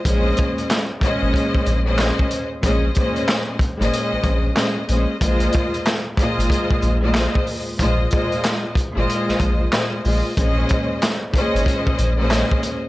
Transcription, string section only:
X:1
M:4/4
L:1/16
Q:"Swing 16ths" 1/4=93
K:Bbm
V:1 name="String section"
[B,,A,Dce]4- [B,,A,Dce] z [B,,A,Dce]4- [B,,A,Dce] [B,,A,Dce]4 z | [B,,A,Dce]2 [B,,A,Dce]4 z [B,,A,Dce]4- [B,,A,Dce] [B,,A,Dce]2 [B,,A,Dce]2 | [B,,A,Fce]4- [B,,A,Fce] z [B,,A,Fce]4- [B,,A,Fce] [B,,A,Fce]4 z | [B,,A,Fce]2 [B,,A,Fce]4 z [B,,A,Fce]4- [B,,A,Fce] [B,,A,Fce]2 [B,,A,Fce]2 |
[B,,A,Dce]4- [B,,A,Dce] z [B,,A,Dce]4- [B,,A,Dce] [B,,A,Dce]4 z |]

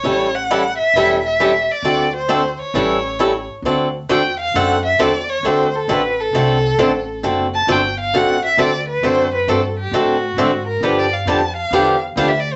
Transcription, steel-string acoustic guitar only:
X:1
M:4/4
L:1/8
Q:"Swing" 1/4=134
K:Dmix
V:1 name="Steel-string acoustic guitar"
[E,G,^CEA] z [E,G,CEA] z [E,G,CEA] z [E,G,CEA] z | [D,A,CFA] z [D,A,CFA] z [E,G,^CEA] z [E,G,CEA] z | [D,A,CFA] z [D,A,CFA] z [D,A,CFA] z [D,A,CFA] z | [D,A,CFA] z [D,A,CFA] z [D,A,CFA] z [D,A,CFA] z |
[D,A,CFA] z [D,A,CFA] z [D,A,CFA] z [D,A,CFA] z | [D,A,CFA] z [D,A,CFA] z [D,A,CFA] z [D,A,CFA] z | [D,=F,B,DG] z [D,F,B,DG] z [D,F,B,DG] z [D,F,B,DG] z |]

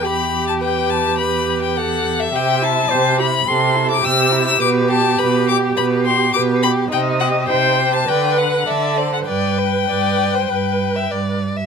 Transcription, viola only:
X:1
M:4/4
L:1/8
Q:1/4=104
K:G
V:1 name="Viola"
G8 | e2 c G A2 G2- | G6 G2 | _e2 c2 B2 A2 |
B6- B z |]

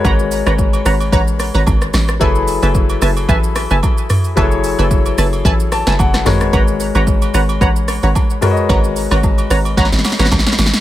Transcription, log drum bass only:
X:1
M:4/4
L:1/16
Q:"Swing 16ths" 1/4=111
K:G#phr
V:1 name="Log drum bass" clef=bass
G,,,3 G,,,3 G,,,2 A,,,3 G,,, G,,,2 A,,,2 | F,,,3 F,,,3 F,,,2 A,,,3 F,,, z4 | F,,,3 F,,,3 F,,,2 A,,,3 F,,, F,,,2 G,,,2 | G,,,3 G,,,3 G,,,2 A,,,3 G,,, z4 |
G,,,3 G,,,3 G,,,2 A,,, G,,, z G,,, A,,, z G,,, z |]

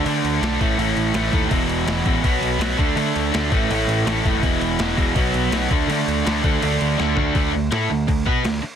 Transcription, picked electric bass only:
X:1
M:4/4
L:1/8
Q:1/4=164
K:D
V:1 name="Picked electric bass" clef=bass
D, D,, B,,, A,,, A,,, A,,, A,,, _E,, | E,,, E,,, E,,, A,,, B,,, B,,, B,,, D,, | D, D,, D,, A,,, A,,, A,,, A,,, F,,, | E,,, E,,, E,,, E,,, B,,, B,,, B,,, D,, |
D, D,, D,, D,, D,, D,, D,, D,, | D,, D,, A,, D,, D,, B,, D,, z |]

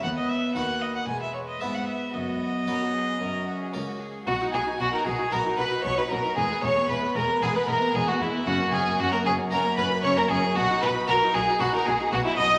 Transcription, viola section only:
X:1
M:4/4
L:1/16
Q:1/4=115
K:B
V:1 name="Viola section"
B,4 A,4 G,4 B,4 | B,8 C6 z2 | F D F D F D F D F D F D F D F D | G, B, G, B, G, B, G, B, G, B, G, B, G, B, G, B, |
C A, C A, C A, C A, C A, C A, C A, C A, | F D F D F D F D F D F D F D F D |]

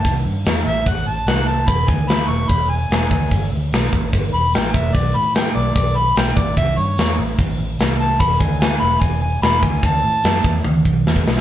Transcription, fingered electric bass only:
X:1
M:4/4
L:1/8
Q:1/4=147
K:Emix
V:1 name="Fingered electric bass" clef=bass
=C,, =G,, E,, A,,, A,,, A,,, C,,2 | E,,, D,,2 E,,, E,,,2 E,,, D,, | =G,,, D,, B,,, A,,, G,,, E,,, A,,, E,,, | B,,, A,,2 B,,, B,,,2 B,,, A,,, |
=C,, =G,, E,, A,,, A,,, A,,, C,,2 | E,,, D,,2 E,,, E,,,2 E,,, D,, | D,, A,, F,, E,, D,, B,,, E,, B,,, |]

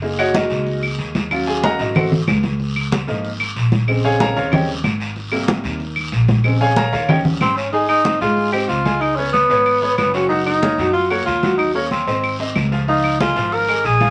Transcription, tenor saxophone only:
X:1
M:4/4
L:1/8
Q:1/4=187
K:Ab
V:1 name="Tenor saxophone"
z8 | z8 | z8 | z8 |
z8 | z6 C D | E E2 F2 G F2 | E D _C4 C D |
E E3 F _G F2 | E D C3 z3 | E2 F2 B2 A2 |]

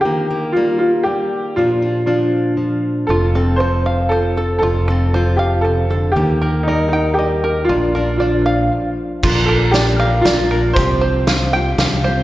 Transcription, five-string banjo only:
X:1
M:3/4
L:1/8
Q:1/4=118
K:Bb
V:1 name="Five-string banjo"
z6 | z6 | F A c f c A | F A c f c A |
G B e g e B | F B d f z2 | F B d f d B | G c f g f c |]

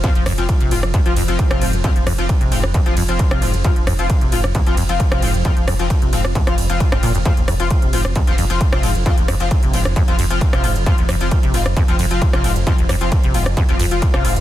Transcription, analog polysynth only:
X:1
M:4/4
L:1/16
Q:1/4=133
K:Fm
V:1 name="Analog polysynth"
[F,CF] z2 [F,CF] z2 [F,CF] z2 [F,CF] z [F,CF] z [F,CF] [F,CF] z | [F,CF] z2 [F,CF] z2 [F,CF] z2 [F,CF] z [F,CF] z [F,CF] [F,CF] z | [F,CF] z2 [F,CF] z2 [F,CF] z2 [F,CF] z [F,CF] z [F,CF] [F,CF] z | [F,CF] z2 [F,CF] z2 [F,CF] z2 [F,CF] z [F,CF] z [F,CF] [F,CF] z |
[F,CF] z2 [F,CF] z2 [F,CF] z2 [F,CF] z [F,CF] z [F,CF] [F,CF] z | [F,CF] z2 [F,CF] z2 [F,CF] z2 [F,CF] z [F,CF] z [F,CF] [F,CF] z | [F,CF] z2 [F,CF] z2 [F,CF] z2 [F,CF] z [F,CF] z [F,CF] [F,CF] z | [F,CF] z2 [F,CF] z2 [F,CF] z2 [F,CF] z [F,CF] z [F,CF] [F,CF] z |]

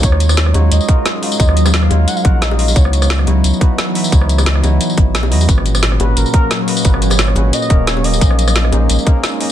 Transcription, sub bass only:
X:1
M:4/4
L:1/8
Q:"Swing 16ths" 1/4=176
K:Ebm
V:1 name="Sub bass" clef=bass
E,,3 E,, E,, z3 | E,,3 E,, z B,,,3 | D,,3 D,, D,, z3 | D,,3 D,, z A,,, C,, _F,, |
A,,,3 A,,, A,,, z3 | A,,,3 A,,, z E,,,3 | B,,,3 B,,, B,,, z3 |]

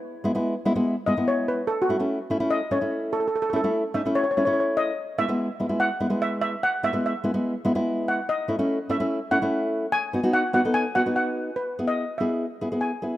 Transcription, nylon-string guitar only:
X:1
M:4/4
L:1/16
Q:1/4=146
K:E
V:1 name="Nylon-string guitar"
z2 [G,B,E] [G,B,E]2 z [G,B,E] [G,B,E]2 z [G,B,E] [G,B,E]4 z | z2 [A,CE] [A,CE]2 z [A,CE] [A,CE]2 z [A,CE] [A,CE]4 z | z2 [A,CE] [A,CE]2 z [A,CD] [A,CE]2 z [A,CE] [A,CE]4 z | z2 [G,B,E] [G,B,E]2 z [G,B,E] [G,B,E]2 z [G,B,E] [G,B,E]4 z |
z2 [G,B,E] [G,B,E]2 z [G,B,E] [G,B,E]2 z [G,B,E] [G,B,E]4 z | z2 [A,CE] [A,CE]2 z [A,CE] [A,CE]2 z [A,CE] [A,CE]4 z | z2 [B,DF] [B,DF]2 z [B,DF] [B,DA]2 z [B,DF] [B,DF]4 z | z2 [B,EG]2 z2 [B,EG]2 z2 [B,EG] [B,EG]2 z [B,EG]2 |]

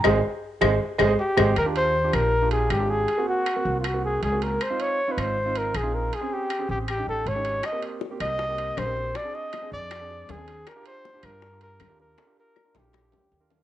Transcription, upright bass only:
X:1
M:4/4
L:1/8
Q:1/4=158
K:Eb
V:1 name="Upright bass" clef=bass
A,,, z2 A,,, z A,,, z A,,, | E,,3 B,,,3 A,,,2 | z3 C,,3 _D,,2 | z3 A,,,3 B,,,2 |
z3 =A,,,2 A,,, _A,,,2 | z3 C,,3 B,,,2 | z3 F,,3 E,,2 | z3 G,,3 E,,2 |
z3 B,,,2 D,, E,,2 |]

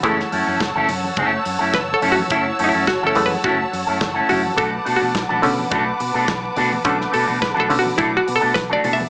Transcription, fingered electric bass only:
X:1
M:4/4
L:1/16
Q:1/4=106
K:Bdor
V:1 name="Fingered electric bass" clef=bass
F,,,2 F,, F,, F,,, F,,, F,,2 F,,,2 F,, F,, F,,,2 F,,2 | F,,,2 F,, F,, F,,, F,,, F,,2 F,,,2 F,, F,, F,,,2 F,,2 | B,,,2 B,, B,, B,,, B,,, B,,2 B,,,2 B,, B,, B,,,2 B,,2 | B,,,2 B,, B,, B,,, B,,, B,,2 B,,,2 B,, B,, B,,,2 B,,2 |]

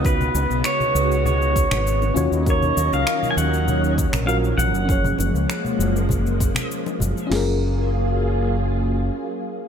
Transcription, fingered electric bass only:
X:1
M:4/4
L:1/16
Q:1/4=99
K:F#
V:1 name="Fingered electric bass" clef=bass
C,,2 C,, B,,, z2 C,,4- C,, G,,,3 D,, D,,- | D,,2 D,, C,, z2 D,,4- D,, A,,,3 A,,, F,,,- | F,,,2 F,,, C,, z2 F,,,4- F,,, z3 F,,, z | F,,,12 z4 |]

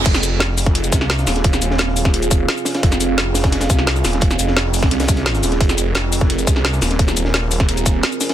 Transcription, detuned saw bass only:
X:1
M:4/4
L:1/8
Q:1/4=173
K:Fm
V:1 name="Detuned saw bass" clef=bass
F,,,4- F,,, C,,2 E,,,- | E,,, E,,,4- E,,, z2 | F,,,4- F,,, C,,2 E,,,- | E,,, F,,,3 C,,3 E,,, |
F,,,4- F,,, C,,2 E,,,- | E,,, E,,,4- E,,, z2 |]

